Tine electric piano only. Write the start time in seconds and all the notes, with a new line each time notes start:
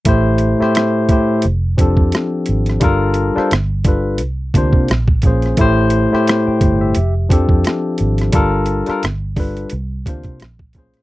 0.05 A2 A3 E4 G4 C5
0.59 A2 A3 E4 G4 C5
1.09 A2 A3 E4 G4 C5
1.77 F3 C4 D4 G4 A4
2.80 G3 D4 F4 A4 A#4
3.35 G3 D4 F4 A4 C5
3.84 G3 D4 F4 A4 B4
4.54 C3 A#3 D4 F4 C5
5.23 A#2 A#3 C#4 G#4 C5
5.58 A2 A3 E4 G4 C5
6.11 A2 A3 E4 G4 C5
6.29 G4
6.47 G5
6.81 G4 E5
7.29 F3 C4 D4 G4 A4
8.32 G3 D4 F4 A4 A#4
8.87 G3 D4 F4 A4 A#4
9.36 G3 D4 F4 A4 B4
10.06 C3 A#3 D4 F4 C5
10.75 A#2 A#3 C#4 G#4 C5